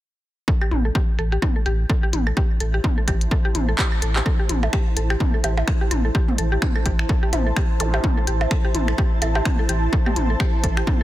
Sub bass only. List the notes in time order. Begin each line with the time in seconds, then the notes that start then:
0.71 A1
1.19 A1
1.66 A1
2.13 A1
2.60 A1
3.08 A1
3.55 A1
4.02 A1
4.49 A1
4.97 A1
5.44 A1
5.91 A1
6.38 A1
6.86 A1
7.33 A1
7.80 A1
8.27 A1
8.75 A1
9.22 A1
9.69 A1
10.16 A1
10.64 A1